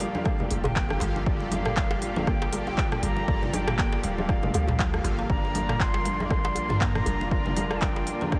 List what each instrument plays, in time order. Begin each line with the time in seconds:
Already playing: string section A#2 F3 F4 G4, analog polysynth A#3 F4 G4 A4 D5, flute F5
0.00 kalimba G3, open hi-hat, muted conga
0.15 high conga
0.25 kalimba G3, flute F5, kick, cross-stick, muted conga, high conga
0.40 high conga, low conga
0.51 808-style bass F1, open hi-hat, djembe tone
0.64 kalimba D3, flute G5, mid tom, muted conga, djembe slap, djembe tone, djembe bass
0.76 kalimba A#3, kick, clap
0.89 analog polysynth A#3 F4 G4 A4 F5, cross-stick, muted conga, djembe tone, high conga
1.00 808-style bass G1, kalimba G3, open hi-hat, djembe slap, djembe bass
1.16 muted conga
1.26 analog polysynth A#3 F4 G4 A4 D5, kick
1.40 kalimba G3, muted conga
1.51 kalimba G3, flute F5, open hi-hat, high conga
1.65 cross-stick, mid tom, djembe slap
1.77 kalimba G3, kick, clap, muted conga
1.91 djembe slap
2.02 flute F5, open hi-hat, muted conga
2.16 kalimba D3, high conga
2.27 kalimba A#3, flute G5, kick, cross-stick, muted conga, high conga, djembe tone
2.42 djembe slap
2.52 kalimba G3, analog polysynth A#3 F4 G4 A4 D5, open hi-hat, djembe tone
2.67 flute G5, muted conga, djembe tone
2.78 kick, clap
2.92 kalimba G3, cross-stick, mid tom, muted conga, high conga
3.03 808-style bass G1, kalimba G3, flute A#5, open hi-hat, djembe bass
3.16 muted conga
3.28 808-style bass G1, kalimba G3, analog polysynth A#3 F4 G4 A4 D5, kick
3.42 muted conga, low conga
3.53 flute G5, open hi-hat, high conga
3.68 kalimba D3, cross-stick, mid tom, djembe slap
3.78 kalimba A#3, flute G5, kick, clap, muted conga
3.92 djembe slap
4.03 808-style bass D1, kalimba G3, flute F5, open hi-hat, muted conga
4.18 high conga
4.29 kick, cross-stick, muted conga, high conga
4.43 kalimba G3, high conga, low conga
4.54 808-style bass D2, kalimba G3, open hi-hat, djembe tone
4.67 mid tom, muted conga, djembe slap, djembe tone, djembe bass
4.79 kalimba G3, kick, clap
4.93 analog polysynth A#3 F4 G4 A4 F5, cross-stick, muted conga, djembe tone, high conga
5.04 808-style bass G1, open hi-hat, djembe slap, djembe bass
5.19 kalimba D3, muted conga
5.29 808-style bass G1, string section D3 F4, kalimba A#3, analog polysynth A#3 D4 F4 A#4 D5, flute A#5, kick
5.45 muted conga
5.55 kalimba G3, open hi-hat, high conga
5.69 cross-stick, mid tom, djembe slap
5.80 flute C6, kick, clap, muted conga
5.94 kalimba G3, djembe slap
6.05 kalimba G3, open hi-hat, muted conga
6.20 flute D6, high conga
6.30 kalimba G3, flute C6, kick, cross-stick, muted conga, high conga, djembe tone
6.45 djembe slap
6.55 analog polysynth A#3 D4 F4 A#4 D5, open hi-hat, djembe tone
6.69 808-style bass G2, kalimba D3, muted conga, djembe tone
6.81 kalimba A#3, flute A#5, kick, clap
6.95 cross-stick, mid tom, muted conga, high conga
7.06 808-style bass F1, kalimba G3, open hi-hat, djembe bass
7.21 muted conga
7.31 analog polysynth A#3 D4 F4 A#4 D5, flute A#5, kick
7.46 kalimba G3, muted conga, low conga
7.56 kalimba G3, open hi-hat, high conga
7.71 cross-stick, djembe slap
7.82 kalimba G3, flute G5, kick, clap, muted conga
7.96 djembe slap
8.07 open hi-hat, muted conga
8.21 kalimba D3, high conga
8.32 kalimba A#3, flute G5, kick, cross-stick, muted conga, high conga